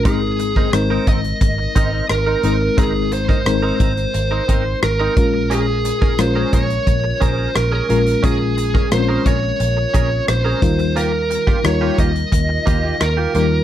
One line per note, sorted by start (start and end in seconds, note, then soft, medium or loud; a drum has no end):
0.05 0.54 G#1 loud
0.05 1.04 G#2 medium
0.05 0.70 G#3 medium
0.05 0.20 C4 medium
0.05 0.70 C4 medium
0.05 0.20 D#4 medium
0.05 0.70 D#4 medium
0.05 0.70 G#4 loud
0.05 0.20 A#4 medium
0.05 0.70 A#4 medium
0.05 kick loud
0.05 closed hi-hat medium
0.22 muted clean electric guitar stroke medium
0.39 muted clean electric guitar stroke soft
0.39 closed hi-hat medium
0.56 0.69 C4 soft
0.56 0.68 D#4 medium
0.56 0.68 A#4 medium
0.56 kick medium
0.73 0.98 G#1 loud
0.73 2.02 G#3 medium
0.73 2.03 C4 medium
0.73 2.03 D#4 medium
0.73 2.03 A#4 medium
0.73 1.08 C5 loud
0.73 muted clean electric guitar stroke soft
0.73 cross-stick loud
0.73 closed hi-hat medium
0.90 1.06 C4 medium
0.90 1.05 D#4 medium
0.90 1.05 A#4 medium
1.07 1.32 G#1 loud
1.07 1.19 C4 medium
1.07 1.19 D#4 medium
1.07 1.19 A#4 medium
1.07 2.06 D#5 medium
1.07 kick medium
1.07 closed hi-hat medium
1.24 muted clean electric guitar stroke soft
1.24 closed hi-hat soft
1.41 1.66 G#1 medium
1.41 muted clean electric guitar stroke soft
1.41 kick medium
1.41 closed hi-hat medium
1.58 muted clean electric guitar stroke soft
1.75 2.00 G#1 loud
1.75 1.90 C4 medium
1.75 1.91 D#4 medium
1.75 1.91 A#4 medium
1.75 kick medium
1.75 closed hi-hat medium
1.92 2.05 C4 soft
1.92 2.04 D#4 soft
1.92 2.04 A#4 medium
2.09 2.34 G#1 medium
2.09 2.78 A#4 medium
2.09 muted clean electric guitar stroke soft
2.09 cross-stick loud
2.09 closed hi-hat medium
2.26 2.42 C4 medium
2.26 2.42 D#4 medium
2.26 2.41 A#4 medium
2.43 2.68 G#1 medium
2.43 2.76 G#3 medium
2.43 2.55 C4 medium
2.43 2.76 C4 medium
2.43 2.55 D#4 medium
2.43 2.76 D#4 medium
2.43 2.56 A#4 medium
2.43 2.77 A#4 medium
2.43 closed hi-hat medium
2.61 muted clean electric guitar stroke soft
2.77 3.27 G#1 medium
2.77 3.76 G#2 medium
2.77 3.42 G#3 medium
2.77 2.92 C4 medium
2.77 3.43 C4 medium
2.77 2.93 D#4 medium
2.77 3.43 D#4 medium
2.77 3.10 G#4 medium
2.77 3.43 A#4 medium
2.77 2.93 A#4 medium
2.77 kick loud
2.77 closed hi-hat medium
2.95 muted clean electric guitar stroke soft
3.12 4.79 C5 loud
3.12 muted clean electric guitar stroke soft
3.12 closed hi-hat medium
3.29 3.41 C4 soft
3.29 3.41 D#4 medium
3.29 3.40 A#4 medium
3.29 kick medium
3.46 3.71 G#1 loud
3.46 4.75 G#3 medium
3.46 4.75 C4 medium
3.46 4.75 D#4 medium
3.46 4.76 A#4 medium
3.46 muted clean electric guitar stroke soft
3.46 cross-stick loud
3.46 closed hi-hat medium
3.62 3.78 C4 medium
3.62 3.78 D#4 medium
3.62 3.78 A#4 medium
3.80 4.05 G#1 medium
3.80 3.91 C4 medium
3.80 3.92 D#4 medium
3.80 3.92 A#4 medium
3.80 kick medium
3.80 closed hi-hat medium
3.97 muted clean electric guitar stroke soft
3.97 closed hi-hat soft
4.14 4.39 G#1 medium
4.14 muted clean electric guitar stroke soft
4.14 closed hi-hat medium
4.31 4.43 C4 soft
4.31 4.43 D#4 soft
4.31 4.43 A#4 medium
4.48 4.73 G#1 medium
4.48 4.63 C4 medium
4.48 4.63 D#4 medium
4.48 4.64 A#4 medium
4.48 kick medium
4.48 closed hi-hat medium
4.83 5.07 G#1 medium
4.83 5.53 A#4 medium
4.83 muted clean electric guitar stroke soft
4.83 cross-stick loud
4.83 closed hi-hat medium
5.00 5.15 C4 medium
5.00 5.15 D#4 medium
5.00 5.14 A#4 medium
5.16 5.90 A#1 medium
5.16 6.15 A#2 medium
5.16 6.13 G#3 medium
5.16 6.14 C#4 medium
5.16 6.14 F4 medium
5.16 6.14 A#4 medium
5.16 kick loud
5.16 closed hi-hat medium
5.34 muted clean electric guitar stroke soft
5.50 5.65 C#4 medium
5.50 5.65 G#4 medium
5.50 6.22 G#4 medium
5.50 5.66 A#4 medium
5.50 closed hi-hat medium
5.67 muted clean electric guitar stroke soft
5.85 muted clean electric guitar stroke soft
5.85 closed hi-hat medium
6.01 6.14 C#4 soft
6.01 6.13 G#4 soft
6.01 6.13 A#4 medium
6.01 kick medium
6.19 6.43 A#1 loud
6.19 7.48 G#3 medium
6.19 7.48 C#4 medium
6.19 7.48 F4 medium
6.19 7.49 A#4 medium
6.19 6.54 C5 loud
6.19 muted clean electric guitar stroke soft
6.19 cross-stick loud
6.19 closed hi-hat medium
6.35 6.51 C#4 medium
6.35 6.51 G#4 medium
6.35 6.50 A#4 medium
6.52 6.78 A#1 medium
6.52 6.64 C#4 medium
6.52 6.64 G#4 medium
6.52 6.65 A#4 medium
6.52 7.24 C#5 medium
6.52 kick medium
6.52 closed hi-hat medium
6.70 muted clean electric guitar stroke soft
6.70 closed hi-hat soft
6.87 7.12 A#1 loud
6.87 muted clean electric guitar stroke soft
6.87 kick medium
6.87 closed hi-hat medium
7.04 muted clean electric guitar stroke soft
7.20 7.46 A#1 medium
7.20 7.35 C#4 medium
7.20 7.36 G#4 medium
7.20 7.36 A#4 loud
7.20 7.56 C5 medium
7.20 kick medium
7.20 closed hi-hat medium
7.37 7.50 C#4 medium
7.37 7.50 G#4 medium
7.37 7.49 A#4 medium
7.55 7.80 A#1 medium
7.55 8.26 A#4 medium
7.55 muted clean electric guitar stroke soft
7.55 cross-stick loud
7.55 closed hi-hat medium
7.72 7.87 C#4 medium
7.72 7.87 G#4 medium
7.72 7.87 A#4 medium
7.89 8.14 A#1 medium
7.89 8.88 A#2 medium
7.89 8.21 G#3 medium
7.89 8.00 C#4 medium
7.89 8.22 C#4 medium
7.89 8.22 F4 medium
7.89 8.01 G#4 medium
7.89 8.01 A#4 medium
7.89 8.22 A#4 medium
7.89 closed hi-hat medium
8.06 muted clean electric guitar stroke soft
8.06 closed hi-hat soft
8.23 8.73 A#1 medium
8.23 8.88 G#3 medium
8.23 8.38 C#4 medium
8.23 8.88 C#4 medium
8.23 8.88 F4 medium
8.23 8.38 G#4 medium
8.23 8.88 G#4 medium
8.23 8.38 A#4 loud
8.23 8.88 A#4 medium
8.23 kick loud
8.23 closed hi-hat medium
8.40 muted clean electric guitar stroke soft
8.57 muted clean electric guitar stroke soft
8.57 closed hi-hat medium
8.74 8.86 C#4 medium
8.74 8.86 G#4 medium
8.74 8.86 A#4 medium
8.74 kick medium
8.91 9.16 A#1 medium
8.91 10.21 G#3 medium
8.91 8.98 C4 soft
8.91 10.21 F4 medium
8.91 10.21 A#4 medium
8.91 9.27 C5 medium
8.91 muted clean electric guitar stroke soft
8.91 cross-stick loud
8.91 closed hi-hat medium
8.98 10.24 C#4 medium
9.08 9.24 C#4 medium
9.08 9.24 G#4 medium
9.08 9.23 A#4 medium
9.26 9.50 A#1 medium
9.26 9.37 C#4 medium
9.26 9.37 G#4 medium
9.26 9.38 A#4 medium
9.26 10.25 C#5 medium
9.26 kick medium
9.26 closed hi-hat medium
9.43 muted clean electric guitar stroke soft
9.60 9.85 A#1 medium
9.60 muted clean electric guitar stroke soft
9.60 closed hi-hat medium
9.77 muted clean electric guitar stroke soft
9.94 10.19 A#1 medium
9.94 10.08 C#4 medium
9.94 10.09 G#4 medium
9.94 10.09 A#4 medium
9.94 kick medium
9.94 closed hi-hat medium
10.11 muted clean electric guitar stroke soft
10.27 10.53 A#1 medium
10.27 10.97 C5 medium
10.27 muted clean electric guitar stroke soft
10.27 cross-stick loud
10.27 closed hi-hat medium
10.45 10.60 C#4 medium
10.45 10.60 G#4 medium
10.45 10.59 A#4 medium
10.62 11.36 D#2 medium
10.62 11.60 D#3 medium
10.62 11.59 G3 medium
10.62 11.59 D#4 medium
10.62 11.59 F4 medium
10.62 11.59 A#4 medium
10.62 muted clean electric guitar stroke soft
10.62 kick loud
10.62 closed hi-hat medium
10.79 muted clean electric guitar stroke soft
10.79 closed hi-hat soft
10.96 11.11 A#3 medium
10.96 11.11 F4 medium
10.96 11.11 G4 medium
10.96 11.65 A#4 medium
10.96 closed hi-hat medium
11.30 muted clean electric guitar stroke soft
11.30 closed hi-hat medium
11.47 11.59 A#3 soft
11.47 11.59 F4 medium
11.47 11.59 G4 medium
11.47 kick medium
11.64 11.89 D#2 medium
11.64 12.93 G3 medium
11.64 12.93 D#4 medium
11.64 12.94 F4 medium
11.64 12.94 A#4 medium
11.64 11.97 C#5 loud
11.64 muted clean electric guitar stroke soft
11.64 cross-stick loud
11.64 closed hi-hat medium
11.81 11.97 A#3 medium
11.81 11.96 F4 medium
11.81 11.96 G4 medium
11.98 12.23 D#2 medium
11.98 12.10 A#3 medium
11.98 12.10 F4 medium
11.98 12.10 G4 medium
11.98 13.04 D#5 medium
11.98 kick medium
11.98 closed hi-hat medium
12.15 muted clean electric guitar stroke soft
12.15 closed hi-hat soft
12.32 12.57 D#2 medium
12.32 muted clean electric guitar stroke soft
12.32 kick medium
12.32 closed hi-hat medium
12.49 muted clean electric guitar stroke soft
12.66 12.91 D#2 medium
12.66 12.81 A#3 medium
12.66 12.81 F4 medium
12.66 12.81 G4 medium
12.66 kick medium
12.66 closed hi-hat medium
12.83 12.95 A#3 medium
12.83 12.95 F4 medium
12.83 12.95 G4 medium
13.01 13.25 D#2 medium
13.01 13.64 A#4 medium
13.01 muted clean electric guitar stroke soft
13.01 cross-stick loud
13.01 closed hi-hat medium
13.17 13.33 A#3 medium
13.17 13.32 F4 medium
13.17 13.32 G4 medium
13.34 13.59 D#2 medium
13.34 13.64 D#3 medium
13.34 13.64 G3 medium
13.34 13.46 A#3 medium
13.34 13.64 D#4 medium
13.34 13.46 F4 medium
13.34 13.64 F4 medium
13.34 13.46 G4 medium
13.34 13.64 A#4 medium
13.34 closed hi-hat medium
13.51 muted clean electric guitar stroke soft